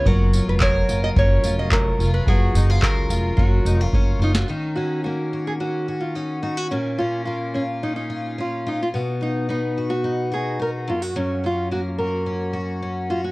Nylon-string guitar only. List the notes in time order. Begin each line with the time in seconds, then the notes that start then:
0.06 A#4
0.49 B4
0.62 C#5
1.04 D#5
1.19 C#5
1.59 D#5
1.72 A#4
2.14 B4
2.28 G#4
3.37 F#4
3.75 F4
4.23 D#4
4.36 F#4
4.48 D#4
4.76 F#4
5.04 F#4
5.47 G#4
5.60 F#4
6.01 F4
6.15 D#4
6.43 D#4
6.57 F#4
6.71 C#4
6.99 F4
7.25 F4
7.54 C#4
7.83 D#4
7.96 D#4
8.40 F4
8.68 D#4
8.83 F4
8.95 F#4
9.23 D#4
9.50 D#4
9.90 F#4
10.34 G#4
10.62 A#4
10.90 F4
11.02 F#4
11.16 C#4
11.46 F4
11.72 F#4
11.99 A#4
13.10 F4
13.24 F#4